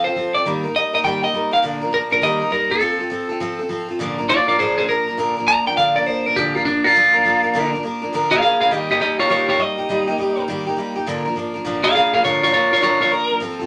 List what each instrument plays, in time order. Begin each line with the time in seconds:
0.04 steel-string acoustic guitar F4 A4, clean electric guitar C5
0.08 steel-string acoustic guitar C4
0.16 steel-string acoustic guitar F3 C4 F4 A4
0.34 steel-string acoustic guitar C4 F4 A4, clean electric guitar D5
0.46 steel-string acoustic guitar D#3 G3 A#3 D#4 A#4
0.64 steel-string acoustic guitar A#3 D#4 A#4
0.74 steel-string acoustic guitar G3 A#3 D#4 A#4, clean electric guitar D#5
0.93 steel-string acoustic guitar A#3 D#4 A#4, clean electric guitar D#5
1.04 steel-string acoustic guitar D#3 G3 A#3 D#4 A#4, clean electric guitar G5
1.23 steel-string acoustic guitar A#3 D#4 A#4, clean electric guitar D#5
1.33 steel-string acoustic guitar G3 A#3 D#4 A#4
1.51 steel-string acoustic guitar A#3 D#4 A#4, clean electric guitar F5
1.62 steel-string acoustic guitar A#2 D3 F3 A#3 D4 A#4
1.81 steel-string acoustic guitar F3 A#3 D4 A#4
1.91 steel-string acoustic guitar F3 A#3 D4 A#4, clean electric guitar A#4
2.10 steel-string acoustic guitar F3 A#3 D4 A#4, clean electric guitar A#4
2.21 steel-string acoustic guitar D#3 G3 A#3 D#4 A#4, clean electric guitar D#5
2.40 steel-string acoustic guitar A#3 D#4 A#4
2.51 steel-string acoustic guitar G3 A#3 D#4 A#4, clean electric guitar A#4
2.70 steel-string acoustic guitar A#3 D#4 A#4, clean electric guitar A4
2.80 steel-string acoustic guitar F3 C4 F4 A4
2.99 steel-string acoustic guitar C4 F4 A4
3.10 steel-string acoustic guitar F3 C4 F4 A4
3.29 steel-string acoustic guitar C4 F4 A4
3.40 steel-string acoustic guitar F3 C4 F4 A4
3.59 steel-string acoustic guitar C4 F4 A4
3.69 steel-string acoustic guitar F3 C4 F4 A4
3.88 steel-string acoustic guitar C4 F4 A4
3.99 steel-string acoustic guitar A#2 D3 F3 A#3 D4 A#4
4.18 steel-string acoustic guitar F3 A#3 D4 A#4
4.29 steel-string acoustic guitar F3 A#3 D4 A#4, clean electric guitar F4 D5
4.48 steel-string acoustic guitar F3 A#3 D4 A#4, clean electric guitar F4 D5
4.59 steel-string acoustic guitar A#2 D3 F3 A#3 D4 A#4, clean electric guitar G#4 C5
4.78 steel-string acoustic guitar F3 A#3 D4 A#4, clean electric guitar G#4 C5
4.88 steel-string acoustic guitar F3 A#3 D4 A#4, clean electric guitar A#4
5.07 steel-string acoustic guitar F3 A#3 D4 A#4
5.17 steel-string acoustic guitar A#2 D3 F3 A#3 D4 A#4
5.37 steel-string acoustic guitar F3 A#3 D4 A#4
5.47 steel-string acoustic guitar F3 A#3 D4 A#4, clean electric guitar A#5
5.66 steel-string acoustic guitar F3 A#3 D4 A#4, clean electric guitar G5
5.77 steel-string acoustic guitar A#2 D3 F3 A#3 D4 A#4, clean electric guitar F5
5.96 steel-string acoustic guitar F3 A#3 D4 A#4, clean electric guitar D5
6.06 steel-string acoustic guitar F3 A#3 D4 A#4, clean electric guitar C5
6.25 steel-string acoustic guitar F3 A#3 D4 A#4, clean electric guitar A#4
6.36 steel-string acoustic guitar A#2 D3 F3 A#3 D4 A#4, clean electric guitar G4
6.55 steel-string acoustic guitar F3 A#3 D4 A#4, clean electric guitar F4
6.65 steel-string acoustic guitar F3 A#3 D4 A#4, clean electric guitar D4
6.84 steel-string acoustic guitar F3 A#3 D4 A#4, clean electric guitar F4
6.95 steel-string acoustic guitar A#2 D3 F3 A#3 D4 A#4
7.13 steel-string acoustic guitar F3 A#3 D4 A#4
7.24 steel-string acoustic guitar F3 A#3 D4 A#4
7.43 steel-string acoustic guitar F3 A#3 D4 A#4
7.54 steel-string acoustic guitar A#2 D3 F3 A#3 D4 A#4
7.73 steel-string acoustic guitar F3 A#3 D4 A#4
7.83 steel-string acoustic guitar F3 A#3 D4 A#4
8.02 steel-string acoustic guitar F3 A#3 D4 A#4
8.13 steel-string acoustic guitar A#2 D3 F3 A#3 D4 A#4
8.31 steel-string acoustic guitar A#3 D4, clean electric guitar G#4 F5
8.35 steel-string acoustic guitar F3
8.41 steel-string acoustic guitar F3 A#3 D4, clean electric guitar G#4 F5
8.45 steel-string acoustic guitar A#4
8.61 steel-string acoustic guitar F3 A#3 D4 A#4, clean electric guitar G#4 F5
8.71 steel-string acoustic guitar D#3 G3 A#3 D#4 G4, clean electric guitar G4 D#5
8.89 steel-string acoustic guitar A#3 D#4 G4, clean electric guitar G4 D#5
9.00 steel-string acoustic guitar G3 A#3 D#4 G4, clean electric guitar G4 D#5
9.19 steel-string acoustic guitar A#3 D#4 G4, clean electric guitar F4 C#5
9.29 steel-string acoustic guitar D#3 G3 A#3 D#4 G4, clean electric guitar F4 C#5
9.48 steel-string acoustic guitar A#3 D#4 G4, clean electric guitar F4 C#5
9.59 steel-string acoustic guitar G3 A#3 D#4 G4, clean electric guitar D#5
9.78 steel-string acoustic guitar A#3 D#4 G4
9.89 steel-string acoustic guitar D#3 G3 A#3 D#4 G4
10.07 steel-string acoustic guitar A#3 D#4 G4
10.18 steel-string acoustic guitar G3 A#3 D#4 G4
10.37 steel-string acoustic guitar A#3 D#4 G4
10.48 steel-string acoustic guitar D#3 G3 A#3 D#4 G4
10.67 steel-string acoustic guitar A#3 D#4 G4
10.77 steel-string acoustic guitar G3 A#3 D#4 G4
10.95 steel-string acoustic guitar A#3 D#4 G4
11.06 steel-string acoustic guitar A#2 D3 F3 A#3 D4 A#4
11.25 steel-string acoustic guitar F3 A#3 D4 A#4
11.36 steel-string acoustic guitar F3 A#3 D4 A#4
11.54 steel-string acoustic guitar F3 A#3 D4 A#4
11.65 steel-string acoustic guitar A#2 D3 F3 A#3 D4 A#4
11.83 steel-string acoustic guitar F3 A#3 D4 A#4, clean electric guitar G#4 F5
11.94 steel-string acoustic guitar F3 A#3 D4 A#4, clean electric guitar G#4 F5
12.13 steel-string acoustic guitar F3 A#3 D4 A#4, clean electric guitar G#4 F5
12.24 steel-string acoustic guitar A#2 D3 F3 A#3 D4 A#4, clean electric guitar F4 C#5
12.43 steel-string acoustic guitar F3 A#3 D4 A#4, clean electric guitar F4 C#5
12.53 steel-string acoustic guitar F3 A#3 D4 A#4, clean electric guitar F4 C#5
12.71 steel-string acoustic guitar F3 A#3 D4 A#4, clean electric guitar F4 C#5
12.82 steel-string acoustic guitar A#2 D3 F3 A#3 D4 A#4, clean electric guitar F4 C#5
13.00 steel-string acoustic guitar F3 A#3 D4 A#4, clean electric guitar F4 C#5
13.10 steel-string acoustic guitar F3 A#3 D4 A#4, clean electric guitar A#4
13.30 steel-string acoustic guitar F3 A#3 D4 A#4
13.40 steel-string acoustic guitar F3 C4 F4 A4
13.59 steel-string acoustic guitar C4 F4 A4